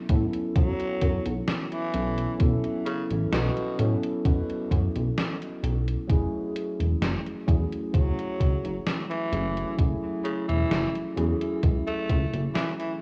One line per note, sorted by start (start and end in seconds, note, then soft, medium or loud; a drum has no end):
0.00 0.09 F#3 loud
0.00 0.09 B3 medium
0.00 0.10 C#4 medium
0.00 0.10 E4 medium
0.00 0.10 A4 loud
0.09 0.26 A2 loud
0.09 0.35 F#3 medium
0.09 0.35 B3 medium
0.09 0.35 C#4 medium
0.09 0.36 E4 medium
0.09 0.36 A4 medium
0.09 kick loud
0.09 closed hi-hat medium
0.33 closed hi-hat medium
0.55 0.72 F#2 loud
0.55 1.48 F#3 loud
0.55 kick loud
0.55 closed hi-hat medium
0.80 closed hi-hat soft
1.01 1.19 F#2 medium
1.01 kick medium
1.01 closed hi-hat medium
1.26 1.41 B1 medium
1.26 closed hi-hat medium
1.48 snare loud
1.48 closed hi-hat medium
1.72 2.40 E3 loud
1.72 closed hi-hat soft
1.93 2.27 B1 medium
1.93 2.35 F#3 medium
1.93 2.35 B3 medium
1.93 2.35 C#4 medium
1.93 2.35 E4 medium
1.93 2.35 A4 loud
1.93 closed hi-hat medium
2.18 closed hi-hat medium
2.39 2.57 B1 loud
2.39 3.73 F#3 medium
2.39 3.73 B3 medium
2.39 3.74 C#4 medium
2.39 3.74 E4 medium
2.39 3.74 A4 medium
2.39 kick loud
2.39 closed hi-hat medium
2.64 closed hi-hat soft
2.86 3.06 C#3 medium
2.86 closed hi-hat medium
3.10 3.26 A1 medium
3.10 closed hi-hat soft
3.32 3.49 B1 medium
3.32 4.03 B2 loud
3.32 snare loud
3.32 closed hi-hat medium
3.57 closed hi-hat soft
3.77 3.96 A2 loud
3.77 6.04 F#3 medium
3.77 6.04 B3 medium
3.77 6.04 C#4 medium
3.77 6.05 E4 medium
3.77 6.05 A4 medium
3.77 closed hi-hat medium
4.03 closed hi-hat medium
4.25 4.42 F#2 medium
4.25 kick loud
4.25 closed hi-hat medium
4.49 closed hi-hat soft
4.71 4.88 F#2 medium
4.71 kick medium
4.71 closed hi-hat medium
4.95 5.11 B1 medium
4.95 closed hi-hat medium
5.18 snare loud
5.18 closed hi-hat medium
5.42 closed hi-hat soft
5.63 5.96 B1 medium
5.63 closed hi-hat medium
5.88 closed hi-hat medium
6.08 6.26 F#1 loud
6.08 7.42 F#3 loud
6.08 7.42 A3 medium
6.08 7.43 C#4 medium
6.08 7.43 E4 medium
6.08 7.43 G#4 loud
6.08 kick loud
6.08 closed hi-hat medium
6.56 closed hi-hat medium
6.80 6.95 E1 medium
6.80 closed hi-hat soft
7.02 7.18 F#1 medium
7.02 snare loud
7.02 closed hi-hat medium
7.26 closed hi-hat soft
7.47 7.65 E2 loud
7.47 7.73 F#3 medium
7.47 7.73 A3 medium
7.47 7.73 C#4 medium
7.47 7.74 E4 medium
7.47 7.74 G#4 medium
7.47 kick loud
7.47 closed hi-hat medium
7.72 closed hi-hat soft
7.93 8.11 C#2 medium
7.93 8.86 F#3 loud
7.93 kick loud
7.93 closed hi-hat medium
8.19 closed hi-hat soft
8.40 8.57 C#2 medium
8.40 kick medium
8.40 closed hi-hat medium
8.64 8.80 F#1 medium
8.64 closed hi-hat soft
8.87 snare loud
8.87 closed hi-hat medium
9.10 9.79 E3 loud
9.10 closed hi-hat soft
9.32 9.65 F#1 medium
9.32 9.73 F#3 medium
9.32 9.73 A3 medium
9.32 9.73 C#4 medium
9.32 9.74 E4 medium
9.32 9.74 G#4 loud
9.32 closed hi-hat medium
9.57 closed hi-hat soft
9.77 9.96 F#1 loud
9.77 11.11 F#3 medium
9.77 11.12 A3 medium
9.77 11.12 C#4 medium
9.77 11.12 E4 medium
9.77 11.13 G#4 medium
9.77 kick loud
9.77 closed hi-hat medium
10.25 10.44 C#3 medium
10.25 closed hi-hat medium
10.48 10.64 E1 medium
10.48 11.04 E3 loud
10.48 closed hi-hat soft
10.71 10.88 F#1 medium
10.71 snare loud
10.71 closed hi-hat medium
10.95 closed hi-hat soft
11.16 11.34 E2 loud
11.16 13.02 F#3 medium
11.16 13.02 A3 medium
11.16 13.02 C#4 medium
11.16 13.02 E4 medium
11.16 13.02 G#4 medium
11.16 closed hi-hat medium
11.41 closed hi-hat medium
11.63 11.80 C#2 loud
11.63 kick loud
11.63 closed hi-hat medium
11.87 12.42 A3 loud
11.87 closed hi-hat soft
12.10 12.26 C#2 medium
12.10 kick medium
12.10 closed hi-hat medium
12.34 12.49 F#1 medium
12.34 closed hi-hat soft
12.55 12.71 E3 medium
12.55 snare loud
12.55 closed hi-hat medium
12.79 12.94 E3 medium
12.79 closed hi-hat soft